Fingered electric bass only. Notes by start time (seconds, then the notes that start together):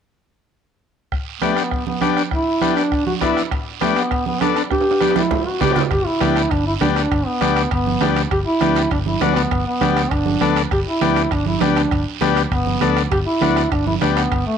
5.91 G1
6.21 D2
6.51 G1
6.81 D2
7.11 G1
7.41 D2
7.71 G1
8.01 D2
8.31 G1
8.61 D2
8.91 G1
9.21 D2
9.51 G1
9.81 D2
10.11 G1
10.41 D2
10.71 G1
11.01 D2
11.31 G1
11.61 D2
11.91 G1
12.21 D2
12.51 G1
12.81 D2
13.12 G1
13.41 D2
13.72 G1
14.02 D2
14.32 G1